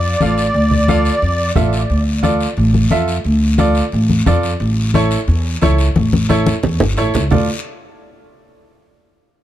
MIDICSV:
0, 0, Header, 1, 5, 480
1, 0, Start_track
1, 0, Key_signature, -1, "minor"
1, 0, Tempo, 338409
1, 769, Time_signature, 4, 2, 24, 8
1, 13381, End_track
2, 0, Start_track
2, 0, Title_t, "Accordion"
2, 0, Program_c, 0, 21
2, 0, Note_on_c, 0, 74, 99
2, 2144, Note_off_c, 0, 74, 0
2, 13381, End_track
3, 0, Start_track
3, 0, Title_t, "Upright piano"
3, 0, Program_c, 1, 0
3, 305, Note_on_c, 1, 65, 76
3, 308, Note_on_c, 1, 69, 66
3, 317, Note_on_c, 1, 77, 79
3, 633, Note_off_c, 1, 65, 0
3, 635, Note_off_c, 1, 69, 0
3, 639, Note_off_c, 1, 77, 0
3, 1256, Note_on_c, 1, 65, 88
3, 1262, Note_on_c, 1, 69, 84
3, 1265, Note_on_c, 1, 77, 100
3, 1589, Note_off_c, 1, 65, 0
3, 1592, Note_off_c, 1, 69, 0
3, 1593, Note_off_c, 1, 77, 0
3, 2207, Note_on_c, 1, 65, 88
3, 2213, Note_on_c, 1, 69, 77
3, 2216, Note_on_c, 1, 76, 90
3, 2545, Note_off_c, 1, 65, 0
3, 2548, Note_off_c, 1, 69, 0
3, 2549, Note_off_c, 1, 76, 0
3, 3159, Note_on_c, 1, 65, 86
3, 3167, Note_on_c, 1, 69, 82
3, 3171, Note_on_c, 1, 74, 93
3, 3501, Note_off_c, 1, 65, 0
3, 3505, Note_off_c, 1, 69, 0
3, 3507, Note_off_c, 1, 74, 0
3, 4126, Note_on_c, 1, 65, 83
3, 4128, Note_on_c, 1, 69, 77
3, 4136, Note_on_c, 1, 76, 93
3, 4465, Note_off_c, 1, 65, 0
3, 4466, Note_off_c, 1, 69, 0
3, 4470, Note_off_c, 1, 76, 0
3, 5086, Note_on_c, 1, 65, 95
3, 5095, Note_on_c, 1, 69, 87
3, 5100, Note_on_c, 1, 74, 104
3, 5424, Note_off_c, 1, 65, 0
3, 5429, Note_off_c, 1, 69, 0
3, 5431, Note_off_c, 1, 74, 0
3, 6047, Note_on_c, 1, 65, 85
3, 6057, Note_on_c, 1, 69, 81
3, 6059, Note_on_c, 1, 74, 96
3, 6385, Note_off_c, 1, 65, 0
3, 6390, Note_off_c, 1, 69, 0
3, 6391, Note_off_c, 1, 74, 0
3, 7009, Note_on_c, 1, 64, 90
3, 7017, Note_on_c, 1, 69, 87
3, 7024, Note_on_c, 1, 73, 102
3, 7346, Note_off_c, 1, 64, 0
3, 7350, Note_off_c, 1, 69, 0
3, 7353, Note_off_c, 1, 73, 0
3, 7967, Note_on_c, 1, 64, 89
3, 7974, Note_on_c, 1, 69, 81
3, 7984, Note_on_c, 1, 73, 102
3, 8305, Note_off_c, 1, 64, 0
3, 8308, Note_off_c, 1, 69, 0
3, 8313, Note_off_c, 1, 73, 0
3, 8923, Note_on_c, 1, 64, 94
3, 8933, Note_on_c, 1, 69, 91
3, 8938, Note_on_c, 1, 73, 98
3, 9263, Note_off_c, 1, 64, 0
3, 9267, Note_off_c, 1, 69, 0
3, 9270, Note_off_c, 1, 73, 0
3, 9890, Note_on_c, 1, 64, 89
3, 9898, Note_on_c, 1, 69, 85
3, 9902, Note_on_c, 1, 73, 98
3, 10226, Note_off_c, 1, 64, 0
3, 10230, Note_off_c, 1, 69, 0
3, 10232, Note_off_c, 1, 73, 0
3, 10367, Note_on_c, 1, 69, 71
3, 10370, Note_on_c, 1, 65, 80
3, 10373, Note_on_c, 1, 74, 88
3, 10591, Note_off_c, 1, 69, 0
3, 10593, Note_off_c, 1, 65, 0
3, 10595, Note_off_c, 1, 74, 0
3, 13381, End_track
4, 0, Start_track
4, 0, Title_t, "Upright bass"
4, 0, Program_c, 2, 32
4, 0, Note_on_c, 2, 41, 96
4, 194, Note_off_c, 2, 41, 0
4, 298, Note_on_c, 2, 33, 89
4, 679, Note_off_c, 2, 33, 0
4, 772, Note_on_c, 2, 38, 94
4, 1540, Note_off_c, 2, 38, 0
4, 1735, Note_on_c, 2, 41, 88
4, 2118, Note_off_c, 2, 41, 0
4, 2212, Note_on_c, 2, 33, 88
4, 2596, Note_off_c, 2, 33, 0
4, 2690, Note_on_c, 2, 38, 86
4, 3459, Note_off_c, 2, 38, 0
4, 3651, Note_on_c, 2, 33, 104
4, 4035, Note_off_c, 2, 33, 0
4, 4612, Note_on_c, 2, 38, 93
4, 5380, Note_off_c, 2, 38, 0
4, 5575, Note_on_c, 2, 33, 101
4, 5957, Note_off_c, 2, 33, 0
4, 6050, Note_on_c, 2, 41, 95
4, 6435, Note_off_c, 2, 41, 0
4, 6527, Note_on_c, 2, 33, 99
4, 7296, Note_off_c, 2, 33, 0
4, 7486, Note_on_c, 2, 40, 99
4, 7872, Note_off_c, 2, 40, 0
4, 7971, Note_on_c, 2, 37, 91
4, 8355, Note_off_c, 2, 37, 0
4, 8455, Note_on_c, 2, 33, 90
4, 9221, Note_off_c, 2, 33, 0
4, 9421, Note_on_c, 2, 40, 105
4, 9609, Note_off_c, 2, 40, 0
4, 9648, Note_on_c, 2, 31, 93
4, 9865, Note_off_c, 2, 31, 0
4, 9895, Note_on_c, 2, 33, 87
4, 10109, Note_off_c, 2, 33, 0
4, 10139, Note_on_c, 2, 37, 85
4, 10351, Note_off_c, 2, 37, 0
4, 10367, Note_on_c, 2, 38, 93
4, 10591, Note_off_c, 2, 38, 0
4, 13381, End_track
5, 0, Start_track
5, 0, Title_t, "Drums"
5, 292, Note_on_c, 9, 63, 89
5, 296, Note_on_c, 9, 73, 66
5, 433, Note_off_c, 9, 63, 0
5, 438, Note_off_c, 9, 73, 0
5, 535, Note_on_c, 9, 73, 76
5, 677, Note_off_c, 9, 73, 0
5, 769, Note_on_c, 9, 74, 72
5, 772, Note_on_c, 9, 63, 36
5, 911, Note_off_c, 9, 74, 0
5, 914, Note_off_c, 9, 63, 0
5, 1009, Note_on_c, 9, 64, 65
5, 1151, Note_off_c, 9, 64, 0
5, 1252, Note_on_c, 9, 63, 87
5, 1254, Note_on_c, 9, 73, 71
5, 1393, Note_off_c, 9, 63, 0
5, 1395, Note_off_c, 9, 73, 0
5, 1493, Note_on_c, 9, 73, 75
5, 1635, Note_off_c, 9, 73, 0
5, 1730, Note_on_c, 9, 63, 34
5, 1735, Note_on_c, 9, 74, 68
5, 1872, Note_off_c, 9, 63, 0
5, 1877, Note_off_c, 9, 74, 0
5, 2207, Note_on_c, 9, 63, 82
5, 2207, Note_on_c, 9, 64, 84
5, 2216, Note_on_c, 9, 73, 67
5, 2349, Note_off_c, 9, 63, 0
5, 2349, Note_off_c, 9, 64, 0
5, 2358, Note_off_c, 9, 73, 0
5, 2451, Note_on_c, 9, 73, 72
5, 2593, Note_off_c, 9, 73, 0
5, 2691, Note_on_c, 9, 74, 69
5, 2833, Note_off_c, 9, 74, 0
5, 3167, Note_on_c, 9, 63, 81
5, 3173, Note_on_c, 9, 73, 70
5, 3309, Note_off_c, 9, 63, 0
5, 3315, Note_off_c, 9, 73, 0
5, 3412, Note_on_c, 9, 73, 74
5, 3554, Note_off_c, 9, 73, 0
5, 3642, Note_on_c, 9, 74, 72
5, 3784, Note_off_c, 9, 74, 0
5, 3886, Note_on_c, 9, 63, 76
5, 4028, Note_off_c, 9, 63, 0
5, 4121, Note_on_c, 9, 63, 80
5, 4125, Note_on_c, 9, 73, 71
5, 4263, Note_off_c, 9, 63, 0
5, 4267, Note_off_c, 9, 73, 0
5, 4366, Note_on_c, 9, 73, 72
5, 4508, Note_off_c, 9, 73, 0
5, 4602, Note_on_c, 9, 74, 72
5, 4744, Note_off_c, 9, 74, 0
5, 5078, Note_on_c, 9, 73, 69
5, 5083, Note_on_c, 9, 63, 88
5, 5220, Note_off_c, 9, 73, 0
5, 5225, Note_off_c, 9, 63, 0
5, 5318, Note_on_c, 9, 73, 72
5, 5460, Note_off_c, 9, 73, 0
5, 5566, Note_on_c, 9, 74, 72
5, 5708, Note_off_c, 9, 74, 0
5, 5808, Note_on_c, 9, 63, 75
5, 5950, Note_off_c, 9, 63, 0
5, 6048, Note_on_c, 9, 73, 72
5, 6049, Note_on_c, 9, 63, 85
5, 6049, Note_on_c, 9, 64, 87
5, 6189, Note_off_c, 9, 73, 0
5, 6191, Note_off_c, 9, 63, 0
5, 6191, Note_off_c, 9, 64, 0
5, 6289, Note_on_c, 9, 73, 72
5, 6431, Note_off_c, 9, 73, 0
5, 6526, Note_on_c, 9, 74, 71
5, 6667, Note_off_c, 9, 74, 0
5, 7008, Note_on_c, 9, 63, 86
5, 7011, Note_on_c, 9, 73, 71
5, 7149, Note_off_c, 9, 63, 0
5, 7153, Note_off_c, 9, 73, 0
5, 7246, Note_on_c, 9, 73, 79
5, 7387, Note_off_c, 9, 73, 0
5, 7484, Note_on_c, 9, 74, 73
5, 7626, Note_off_c, 9, 74, 0
5, 7965, Note_on_c, 9, 73, 69
5, 7977, Note_on_c, 9, 63, 82
5, 8106, Note_off_c, 9, 73, 0
5, 8119, Note_off_c, 9, 63, 0
5, 8205, Note_on_c, 9, 73, 75
5, 8347, Note_off_c, 9, 73, 0
5, 8449, Note_on_c, 9, 74, 73
5, 8453, Note_on_c, 9, 63, 108
5, 8591, Note_off_c, 9, 74, 0
5, 8595, Note_off_c, 9, 63, 0
5, 8696, Note_on_c, 9, 63, 101
5, 8838, Note_off_c, 9, 63, 0
5, 8920, Note_on_c, 9, 73, 74
5, 8935, Note_on_c, 9, 63, 77
5, 9061, Note_off_c, 9, 73, 0
5, 9076, Note_off_c, 9, 63, 0
5, 9170, Note_on_c, 9, 63, 90
5, 9170, Note_on_c, 9, 73, 71
5, 9311, Note_off_c, 9, 63, 0
5, 9312, Note_off_c, 9, 73, 0
5, 9403, Note_on_c, 9, 74, 72
5, 9410, Note_on_c, 9, 64, 74
5, 9544, Note_off_c, 9, 74, 0
5, 9552, Note_off_c, 9, 64, 0
5, 9648, Note_on_c, 9, 64, 106
5, 9790, Note_off_c, 9, 64, 0
5, 9883, Note_on_c, 9, 73, 71
5, 10025, Note_off_c, 9, 73, 0
5, 10125, Note_on_c, 9, 73, 80
5, 10141, Note_on_c, 9, 64, 81
5, 10267, Note_off_c, 9, 73, 0
5, 10283, Note_off_c, 9, 64, 0
5, 10361, Note_on_c, 9, 74, 101
5, 10377, Note_on_c, 9, 64, 102
5, 10503, Note_off_c, 9, 74, 0
5, 10519, Note_off_c, 9, 64, 0
5, 13381, End_track
0, 0, End_of_file